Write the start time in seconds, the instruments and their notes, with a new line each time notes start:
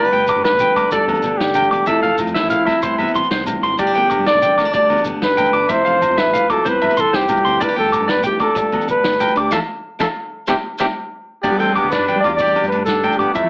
Already playing: steel-string acoustic guitar G2, muted trumpet B4
0.05 steel-string acoustic guitar G4
0.12 analog synth bass G1, steel-string acoustic guitar B3, clean electric guitar G5, closed hi-hat, high conga
0.27 steel-string acoustic guitar D3, clean electric guitar D6, kick, closed hi-hat, low agogo, shekere
0.36 analog synth bass G2, muted conga
0.44 muted trumpet B4, muted clean electric guitar stroke, snare, closed hi-hat, low conga
0.52 analog synth bass B1, high conga
0.59 steel-string acoustic guitar G2, clean electric guitar G5, closed hi-hat, low conga, shekere
0.76 steel-string acoustic guitar D4, clean electric guitar D6, kick, closed hi-hat, muted conga, low agogo
0.85 low conga
0.91 steel-string acoustic guitar G2 G4, muted trumpet A4, clean electric guitar D5, kick, closed hi-hat, high conga, shekere
1.07 analog synth bass D2, steel-string acoustic guitar B3, closed hi-hat, low conga, low agogo
1.14 muted conga, shekere
1.22 analog synth bass G1, steel-string acoustic guitar D3, closed hi-hat, shekere
1.33 high conga, low conga
1.38 analog synth bass G1, muted trumpet G4, snare, closed hi-hat
1.47 low conga, shekere
1.54 steel-string acoustic guitar G2, clean electric guitar G5, closed hi-hat, muted conga, low conga, low agogo, shekere
1.63 high conga, low conga, shekere
1.71 analog synth bass E1, steel-string acoustic guitar D4, clean electric guitar D6, closed hi-hat, low conga
1.80 low conga
1.86 analog synth bass F1, steel-string acoustic guitar F2 F3 A3 C4 E4, muted trumpet A4, clean electric guitar E5, kick, closed hi-hat, muted conga, low agogo, shekere
2.03 analog synth bass F1, steel-string acoustic guitar A3, clean electric guitar F5, closed hi-hat, high conga, low conga
2.12 low conga
2.18 steel-string acoustic guitar F3, kick, closed hi-hat, low agogo, shekere
2.27 analog synth bass F2, muted conga, shekere
2.34 muted trumpet E4, clean electric guitar E5, snare, closed hi-hat, low conga
2.43 analog synth bass A1
2.50 steel-string acoustic guitar C3, clean electric guitar F5, closed hi-hat, low conga, shekere
2.66 steel-string acoustic guitar C4, clean electric guitar E5, kick, snare, closed hi-hat, muted conga, low agogo
2.82 analog synth bass C2, steel-string acoustic guitar C3 B3 C4, clean electric guitar C5, muted steel-string acoustic guitar stroke, kick, closed hi-hat, high conga, shekere
2.93 low conga
2.98 analog synth bass G2, steel-string acoustic guitar B3, clean electric guitar E5, closed hi-hat, low conga, low agogo
3.07 muted conga, shekere
3.14 analog synth bass C2, steel-string acoustic guitar E3, clean electric guitar C6, closed hi-hat, low conga, shekere
3.24 high conga, shekere
3.31 analog synth bass C2, clean electric guitar C5, snare, closed hi-hat
3.46 steel-string acoustic guitar G2, closed hi-hat, muted conga, low conga, low agogo, shekere
3.56 high conga
3.62 analog synth bass G#1, steel-string acoustic guitar C4, clean electric guitar C6, closed hi-hat, low conga
3.74 steel-string acoustic guitar G2 B3, low conga
3.78 analog synth bass G1, muted trumpet G4, clean electric guitar D5, kick, closed hi-hat, muted conga, low agogo, shekere
3.87 steel-string acoustic guitar D4
3.95 analog synth bass G1, steel-string acoustic guitar B3, clean electric guitar G5, closed hi-hat, high conga, low conga
4.10 steel-string acoustic guitar D3, muted clean electric guitar stroke, kick, closed hi-hat, low agogo, shekere
4.18 analog synth bass G2, muted conga
4.26 clean electric guitar D5, muted trumpet D5, snare, closed hi-hat, low conga
4.34 analog synth bass B1, high conga
4.42 steel-string acoustic guitar G2, clean electric guitar G5, closed hi-hat, low conga, shekere
4.58 steel-string acoustic guitar B3, clean electric guitar D6, kick, snare, closed hi-hat, muted conga, low agogo
4.65 steel-string acoustic guitar D4
4.69 low conga
4.73 steel-string acoustic guitar G2 G4, clean electric guitar D5, muted trumpet D5, kick, closed hi-hat, high conga, shekere
4.89 analog synth bass D2, steel-string acoustic guitar B3, closed hi-hat, low conga, low agogo
4.97 shekere
5.02 steel-string acoustic guitar D3, muted conga, shekere
5.06 analog synth bass G1, closed hi-hat
5.17 high conga, low conga
5.22 analog synth bass G1, muted trumpet B4, snare, closed hi-hat
5.29 shekere
5.37 steel-string acoustic guitar G2, clean electric guitar G5, closed hi-hat, muted conga, low conga, low agogo, shekere
5.45 high conga, low conga, shekere
5.53 analog synth bass G1, steel-string acoustic guitar D4, clean electric guitar D6, closed hi-hat, low conga
5.69 analog synth bass F1, steel-string acoustic guitar F2 E4, muted trumpet C5, clean electric guitar E5, kick, closed hi-hat, muted conga, low agogo, shekere
5.84 analog synth bass F1, steel-string acoustic guitar A3, clean electric guitar F5, closed hi-hat, high conga, low conga
6.01 steel-string acoustic guitar F3, kick, closed hi-hat, low agogo, shekere
6.10 analog synth bass F2, muted conga
6.17 steel-string acoustic guitar G2, muted trumpet B4, clean electric guitar E5, snare, closed hi-hat, low conga
6.26 analog synth bass A1, high conga
6.33 steel-string acoustic guitar A2, clean electric guitar F5, closed hi-hat, low conga, shekere
6.50 steel-string acoustic guitar B2, muted trumpet A4, clean electric guitar D6, kick, closed hi-hat, muted conga, low agogo
6.59 low conga
6.64 analog synth bass C2, steel-string acoustic guitar C3 E4, muted trumpet B4, clean electric guitar C5, kick, closed hi-hat, high conga, shekere
6.81 analog synth bass G2, steel-string acoustic guitar B3, clean electric guitar E5, closed hi-hat, low conga, low agogo
6.90 muted conga, shekere
6.97 analog synth bass C2, steel-string acoustic guitar E3, muted trumpet A4, clean electric guitar C6, closed hi-hat, shekere
7.07 low conga
7.13 analog synth bass C2, muted trumpet G4, clean electric guitar C5, snare, closed hi-hat
7.21 low conga, shekere
7.28 steel-string acoustic guitar G2, closed hi-hat, muted conga, low conga, low agogo, shekere
7.37 high conga, low conga, shekere
7.45 analog synth bass D2, steel-string acoustic guitar C4, clean electric guitar C6, closed hi-hat, low conga
7.54 low conga
7.60 analog synth bass G1, steel-string acoustic guitar G2 E4, muted trumpet B4, clean electric guitar D5, kick, closed hi-hat, muted conga, low agogo, shekere
7.68 steel-string acoustic guitar G4
7.76 analog synth bass G1, steel-string acoustic guitar B3, muted trumpet A4, clean electric guitar G5, closed hi-hat, high conga, low conga
7.92 clean electric guitar D6, kick, closed hi-hat, low agogo, shekere
8.00 analog synth bass G2, muted conga
8.08 muted trumpet B4, clean electric guitar D5, snare, closed hi-hat, low conga
8.16 analog synth bass B1, high conga
8.23 steel-string acoustic guitar G2, muted trumpet G4, clean electric guitar G5, closed hi-hat, low conga, shekere
8.39 steel-string acoustic guitar D4, muted trumpet A4, clean electric guitar D6, kick, closed hi-hat, muted conga, low agogo
8.49 low conga
8.54 steel-string acoustic guitar G2 G4, muted clean electric guitar stroke, kick, closed hi-hat, high conga, shekere
8.72 analog synth bass D2, steel-string acoustic guitar B3, closed hi-hat, low conga, low agogo
8.81 muted conga, shekere
8.88 analog synth bass G1, steel-string acoustic guitar D3, muted trumpet B4, closed hi-hat, shekere
8.97 high conga, low conga
9.04 analog synth bass G1, snare, closed hi-hat
9.12 low conga, shekere
9.20 clean electric guitar G5, muted steel-string acoustic guitar stroke, closed hi-hat, muted conga, low conga, low agogo, shekere
9.27 high conga, shekere
9.36 analog synth bass D2, steel-string acoustic guitar D4, muted trumpet G4, clean electric guitar D6, closed hi-hat, low conga
9.46 low conga
9.51 analog synth bass F2, steel-string acoustic guitar E3 F3 A3, muted trumpet A4, clean electric guitar E5 F5 A5, kick, snare, muted conga, low agogo, shekere
9.99 analog synth bass F2, steel-string acoustic guitar E3 F3 A3, muted trumpet A4, clean electric guitar E5 F5 A5, kick, snare, muted conga, low agogo, shekere
10.47 analog synth bass C2, steel-string acoustic guitar G3 B3 C4, muted trumpet G4, clean electric guitar C5 E5 G5, kick, snare, muted conga, low agogo, shekere
10.78 analog synth bass C2, steel-string acoustic guitar G3 B3 C4, muted trumpet G4, clean electric guitar C5 E5 G5, kick, snare, muted conga, low agogo, shekere
11.42 analog synth bass G2, steel-string acoustic guitar G2 D4, trumpet B3, muted trumpet G4, clean electric guitar D5, kick, crash, muted conga, low agogo, shekere
11.51 analog synth bass G3
11.58 steel-string acoustic guitar B3, trumpet C4, muted trumpet A4, clean electric guitar G5, closed hi-hat, high conga, low conga
11.73 muted trumpet G4, clean electric guitar D6, kick, closed hi-hat
11.77 trumpet B3, low agogo
11.84 analog synth bass D2, muted conga
11.91 steel-string acoustic guitar D4, trumpet D4, muted trumpet B4, clean electric guitar D5, snare, closed hi-hat, high conga, shekere
11.99 analog synth bass G2
12.08 steel-string acoustic guitar G2, clean electric guitar G5, closed hi-hat, low conga, shekere
12.16 analog synth bass G3, high conga, low conga
12.20 analog synth bass E2, muted trumpet D5, closed hi-hat, low agogo
12.24 trumpet F4, steel-string acoustic guitar G4, clean electric guitar D6, muted conga, low conga
12.36 muted trumpet D5, kick, closed hi-hat, shekere
12.40 steel-string acoustic guitar G2 G4, trumpet G4, clean electric guitar D5
12.47 high conga, shekere
12.55 steel-string acoustic guitar B3, closed hi-hat, low conga, low agogo
12.63 analog synth bass G2, muted conga, shekere
12.68 steel-string acoustic guitar D3, trumpet D4, muted trumpet B4, closed hi-hat
12.72 high conga
12.81 low conga
12.85 trumpet D4, steel-string acoustic guitar D4, muted trumpet A4, snare, closed hi-hat, shekere
13.04 steel-string acoustic guitar G2, clean electric guitar G5, closed hi-hat, muted conga, high conga, low conga, low agogo, shekere
13.12 shekere
13.17 analog synth bass G2, trumpet B3, steel-string acoustic guitar D4, muted trumpet G4, clean electric guitar D6, closed hi-hat, low conga
13.28 high conga
13.33 steel-string acoustic guitar F2 F3 A3 C4, analog synth bass F2, trumpet A3, muted trumpet E4, clean electric guitar E5, kick, closed hi-hat, muted conga, low agogo, shekere
13.43 analog synth bass F3